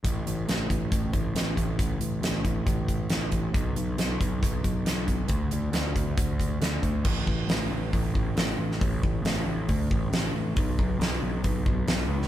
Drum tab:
CC |----------------|----------------|----------------|----------------|
HH |x-x-x-x-x-x-x-x-|x-x-x-x-x-x-x-x-|x-x-x-x-x-x-x-x-|x-x-x-x-x-x-x-x-|
SD |----o-------o---|----o-------o---|----o-------o---|----o-------o---|
BD |o-----o-o-o---o-|o-----o-o-o---o-|o-----o-o-o---o-|o-----o-o-o---o-|

CC |x---------------|----------------|----------------|
HH |----o---o---o---|o---o---o---o---|o---o---o---o---|
SD |----o-------o--o|----o-------o---|----o-------o--o|
BD |o-o-----o-o-----|o-o-----o-o-----|o-o-----o-o-----|